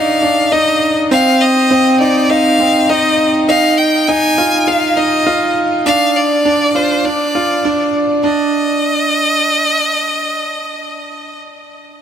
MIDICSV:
0, 0, Header, 1, 3, 480
1, 0, Start_track
1, 0, Tempo, 594059
1, 898, Time_signature, 4, 2, 24, 8
1, 9711, End_track
2, 0, Start_track
2, 0, Title_t, "Violin"
2, 0, Program_c, 0, 40
2, 0, Note_on_c, 0, 77, 98
2, 418, Note_on_c, 0, 75, 102
2, 430, Note_off_c, 0, 77, 0
2, 778, Note_off_c, 0, 75, 0
2, 899, Note_on_c, 0, 77, 111
2, 1138, Note_on_c, 0, 75, 105
2, 1151, Note_off_c, 0, 77, 0
2, 1612, Note_off_c, 0, 75, 0
2, 1617, Note_on_c, 0, 74, 99
2, 1856, Note_on_c, 0, 77, 106
2, 1868, Note_off_c, 0, 74, 0
2, 2338, Note_on_c, 0, 75, 102
2, 2350, Note_off_c, 0, 77, 0
2, 2698, Note_off_c, 0, 75, 0
2, 2815, Note_on_c, 0, 77, 122
2, 3052, Note_on_c, 0, 79, 104
2, 3064, Note_off_c, 0, 77, 0
2, 3293, Note_on_c, 0, 80, 115
2, 3305, Note_off_c, 0, 79, 0
2, 3777, Note_on_c, 0, 77, 99
2, 3790, Note_off_c, 0, 80, 0
2, 4016, Note_on_c, 0, 75, 101
2, 4028, Note_off_c, 0, 77, 0
2, 4497, Note_off_c, 0, 75, 0
2, 4735, Note_on_c, 0, 77, 127
2, 4978, Note_on_c, 0, 74, 109
2, 4990, Note_off_c, 0, 77, 0
2, 5456, Note_on_c, 0, 72, 100
2, 5468, Note_off_c, 0, 74, 0
2, 5698, Note_on_c, 0, 74, 100
2, 5710, Note_off_c, 0, 72, 0
2, 6418, Note_off_c, 0, 74, 0
2, 6655, Note_on_c, 0, 75, 103
2, 9191, Note_off_c, 0, 75, 0
2, 9711, End_track
3, 0, Start_track
3, 0, Title_t, "Grand piano"
3, 0, Program_c, 1, 0
3, 0, Control_c, 1, 64, 127
3, 0, Note_on_c, 1, 62, 92
3, 0, Note_on_c, 1, 63, 86
3, 167, Note_off_c, 1, 63, 0
3, 179, Note_off_c, 1, 62, 0
3, 179, Note_on_c, 1, 62, 81
3, 315, Note_off_c, 1, 62, 0
3, 420, Note_on_c, 1, 63, 101
3, 647, Note_off_c, 1, 63, 0
3, 899, Note_on_c, 1, 60, 104
3, 909, Control_c, 1, 64, 0
3, 1046, Control_c, 1, 64, 127
3, 1126, Note_off_c, 1, 60, 0
3, 1379, Note_on_c, 1, 60, 96
3, 1606, Note_off_c, 1, 60, 0
3, 1620, Note_on_c, 1, 63, 76
3, 1847, Note_off_c, 1, 63, 0
3, 1862, Note_on_c, 1, 63, 85
3, 2088, Note_off_c, 1, 63, 0
3, 2099, Note_on_c, 1, 60, 80
3, 2235, Note_off_c, 1, 60, 0
3, 2340, Note_on_c, 1, 63, 107
3, 2567, Note_off_c, 1, 63, 0
3, 2817, Note_on_c, 1, 63, 104
3, 2829, Control_c, 1, 64, 0
3, 2955, Control_c, 1, 64, 127
3, 3045, Note_off_c, 1, 63, 0
3, 3300, Note_on_c, 1, 63, 94
3, 3527, Note_off_c, 1, 63, 0
3, 3540, Note_on_c, 1, 65, 81
3, 3765, Note_off_c, 1, 65, 0
3, 3777, Note_on_c, 1, 65, 84
3, 4006, Note_off_c, 1, 65, 0
3, 4014, Note_on_c, 1, 63, 76
3, 4152, Note_off_c, 1, 63, 0
3, 4255, Note_on_c, 1, 65, 104
3, 4484, Note_off_c, 1, 65, 0
3, 4734, Note_on_c, 1, 62, 108
3, 4749, Control_c, 1, 64, 0
3, 4893, Control_c, 1, 64, 127
3, 4964, Note_off_c, 1, 62, 0
3, 5214, Note_on_c, 1, 62, 97
3, 5444, Note_off_c, 1, 62, 0
3, 5454, Note_on_c, 1, 65, 77
3, 5684, Note_off_c, 1, 65, 0
3, 5698, Note_on_c, 1, 62, 88
3, 5709, Control_c, 1, 64, 0
3, 5832, Control_c, 1, 64, 127
3, 5926, Note_off_c, 1, 62, 0
3, 5940, Note_on_c, 1, 65, 79
3, 6167, Note_off_c, 1, 65, 0
3, 6181, Note_on_c, 1, 62, 108
3, 6316, Note_off_c, 1, 62, 0
3, 6656, Note_on_c, 1, 62, 92
3, 6669, Control_c, 1, 64, 0
3, 6822, Control_c, 1, 64, 127
3, 6880, Note_off_c, 1, 62, 0
3, 9711, End_track
0, 0, End_of_file